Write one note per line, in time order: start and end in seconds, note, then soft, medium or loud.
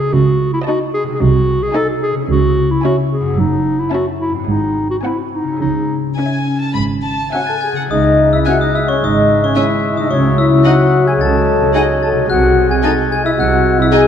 0.00 1.15 C#3 soft
0.00 1.17 A3 soft
0.00 1.11 D#4 soft
0.00 2.30 F#4 soft
0.00 0.15 G#4 medium
0.13 0.56 C#2 medium
0.13 0.56 C#3 medium
0.13 0.53 F#4 medium
0.53 0.60 E4 medium
0.66 1.08 D#4 soft
0.66 0.79 F#4 medium
0.66 1.07 D#5 soft
0.66 1.07 A5 soft
0.94 1.03 G#4 medium
1.03 2.24 C3 soft
1.08 3.35 G#3 soft
1.12 2.28 D#4 soft
1.12 1.23 G#4 medium
1.17 1.64 C3 medium
1.17 2.24 G#4 soft
1.21 1.64 C2 medium
1.21 1.64 F#4 medium
1.63 1.75 G#4 medium
1.74 2.16 D#4 soft
1.74 1.88 A4 medium
1.74 2.16 D#5 soft
1.74 2.16 G#5 soft
2.03 2.15 G#4 medium
2.12 3.32 C#3 soft
2.16 3.24 C#4 soft
2.21 3.29 E4 soft
2.26 3.39 G#4 soft
2.30 2.73 C#2 medium
2.30 2.73 C#3 medium
2.30 2.73 F#4 medium
2.71 2.84 E4 medium
2.84 3.25 C#4 soft
2.84 2.97 F#4 medium
2.84 3.25 E5 soft
2.84 3.25 G#5 soft
3.13 3.41 G#4 medium
3.21 4.42 F#2 soft
3.25 4.44 C#4 soft
3.30 4.46 E4 soft
3.34 3.82 F#2 medium
3.34 4.48 A4 soft
3.38 3.82 F#1 medium
3.38 3.81 D#4 medium
3.80 3.93 E4 medium
3.93 4.34 C#4 soft
3.93 4.06 F#4 medium
3.93 4.34 E5 soft
3.93 4.34 A5 soft
4.20 4.33 E4 soft
4.30 5.55 G#2 soft
4.35 5.57 C4 soft
4.39 5.59 F#4 soft
4.44 5.55 G#4 soft
4.48 4.92 G#1 soft
4.48 4.93 G#2 soft
4.48 4.90 D#4 medium
4.90 4.97 F#4 medium
5.03 5.47 C4 soft
5.03 5.18 E4 soft
5.03 5.47 F#5 soft
5.03 5.46 G#5 soft
5.33 5.61 D#4 soft
5.43 7.71 C#3 soft
5.47 7.76 C#4 soft
5.52 7.80 E4 soft
5.56 7.85 G#4 soft
5.61 6.07 C#2 soft
5.61 6.07 C#3 soft
5.61 5.98 D#4 medium
6.17 7.29 C#4 soft
6.17 6.62 C#4 soft
6.17 6.62 E5 soft
6.17 6.58 G#5 soft
6.60 6.75 A5 soft
6.74 7.22 G#1 soft
6.74 7.21 G#2 soft
6.74 6.82 B5 soft
7.03 7.32 A5 soft
7.33 7.76 C#4 soft
7.33 7.41 F#4 soft
7.33 7.76 E5 soft
7.33 7.40 F#5 soft
7.33 7.75 G#5 soft
7.33 7.46 F#6 soft
7.47 7.56 A4 soft
7.47 7.54 A5 soft
7.47 7.60 A6 soft
7.61 7.76 G#4 soft
7.61 7.68 G#5 soft
7.61 7.88 G#6 soft
7.72 9.92 C#3 soft
7.72 7.81 F#5 soft
7.77 11.67 C#4 soft
7.81 10.09 E4 soft
7.86 10.11 G#4 soft
7.86 11.21 E5 soft
7.90 8.37 C#2 soft
7.90 8.37 C#3 soft
7.90 10.07 G#3 soft
7.90 8.32 D#4 medium
7.90 8.31 D#5 medium
7.90 8.29 D#6 medium
8.33 8.47 E4 soft
8.33 8.39 E5 soft
8.33 8.45 E6 soft
8.45 8.55 C#4 soft
8.45 8.54 F#4 medium
8.45 8.54 E5 soft
8.45 8.60 F#5 medium
8.45 8.53 G#5 soft
8.45 8.59 F#6 medium
8.61 8.69 D#4 soft
8.61 8.77 D#5 soft
8.61 8.73 D#6 soft
8.75 8.81 E4 medium
8.75 8.91 E5 soft
8.75 8.88 E6 soft
8.88 8.95 C#4 soft
8.88 9.06 C#5 soft
8.88 9.01 C#6 soft
9.01 9.47 G#1 soft
9.01 9.47 G#2 soft
9.01 9.42 D#4 medium
9.01 9.44 D#5 soft
9.01 9.41 D#6 soft
9.44 9.57 C#4 soft
9.44 9.56 C#5 soft
9.44 9.56 C#6 soft
9.55 9.65 C#4 soft
9.55 9.98 E4 medium
9.55 9.63 E5 soft
9.55 9.97 E5 soft
9.55 9.64 G#5 soft
9.55 9.95 E6 soft
9.94 12.22 C#3 soft
9.94 10.10 D#6 soft
9.98 12.25 A3 soft
9.98 10.06 D#4 medium
9.98 10.11 D#5 soft
10.03 12.20 D#4 soft
10.07 10.56 C#2 soft
10.07 12.25 F#3 soft
10.07 13.97 F#4 soft
10.07 10.36 C#6 soft
10.11 10.57 C#3 medium
10.11 10.25 C#4 soft
10.11 10.38 C#5 soft
10.38 10.65 E4 medium
10.38 10.46 E5 soft
10.38 10.64 E6 soft
10.64 10.73 D#4 soft
10.64 11.07 F#4 medium
10.64 10.72 D#5 soft
10.64 10.74 F#5 soft
10.64 11.07 F#5 soft
10.64 11.05 F#6 soft
11.07 11.21 G#4 medium
11.07 11.13 G#5 medium
11.07 11.20 G#6 soft
11.20 11.66 C#2 soft
11.20 11.66 C#3 soft
11.20 11.76 A4 medium
11.20 14.07 D#5 soft
11.20 11.74 A5 medium
11.20 11.71 A6 medium
11.74 11.82 D#4 soft
11.74 11.88 G#4 medium
11.74 11.83 D#5 soft
11.74 11.82 F#5 soft
11.74 11.82 G#5 medium
11.74 12.01 G#6 medium
12.03 12.29 A4 medium
12.03 12.09 A5 soft
12.03 12.28 A6 soft
12.12 14.07 C3 soft
12.16 14.07 G#3 soft
12.21 14.07 D#4 soft
12.25 12.74 C2 medium
12.25 12.74 C3 medium
12.25 14.07 G#3 medium
12.25 14.07 G#4 soft
12.30 12.70 F#4 medium
12.30 12.69 F#5 medium
12.30 12.67 F#6 medium
12.70 12.84 G#4 medium
12.70 12.76 G#5 soft
12.70 12.83 G#6 medium
12.82 12.91 D#4 soft
12.82 12.97 A4 medium
12.82 12.92 D#5 soft
12.82 12.90 G#5 soft
12.82 12.90 A5 medium
12.82 13.10 A6 medium
13.11 13.18 G#4 medium
13.11 13.24 G#5 medium
13.11 13.24 G#6 medium
13.25 13.31 E4 medium
13.25 13.31 E5 medium
13.25 13.38 E6 medium
13.38 13.83 C2 medium
13.38 13.84 C3 medium
13.38 13.78 F#4 medium
13.38 13.78 F#5 medium
13.38 13.77 F#6 medium
13.79 13.93 E4 medium
13.79 13.86 E5 soft
13.79 13.93 E6 medium
13.91 14.00 D#4 soft
13.91 14.07 G#4 medium
13.91 14.01 D#5 soft
13.91 14.00 G#5 soft
13.91 14.07 G#5 medium
13.91 14.07 G#6 medium